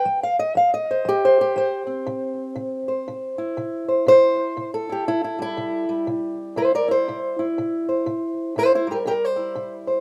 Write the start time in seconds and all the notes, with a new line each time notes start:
Already playing: G5
0.05 F3
0.23 F5
0.39 D#5
0.55 F3 F5
0.74 D#5
0.91 C5
1.05 F3 G4
1.25 C5
1.41 G4
1.56 F3 C5
1.87 C4
2.07 C3
2.56 C3
2.88 C5
3.08 C3
3.38 E4
3.57 C3
3.89 C5
4.06 C3 C5
4.57 C3
4.74 A4
4.89 E4 G4
5.08 C3 E4
5.24 E4
5.39 G3 E4
5.57 C3
5.89 G3
6.07 C3
6.56 C3 E4 C5
6.75 A#4 D5
6.88 E4 C5
7.08 C3
7.39 E4
7.58 C3
7.89 C5
8.06 C3
8.56 C3 E4 C5
8.75 E4 C5
8.87 G3 G4
8.92 A#4
9.06 C3 G4 A#4
9.25 C5
9.36 E4
9.56 C3
9.87 C5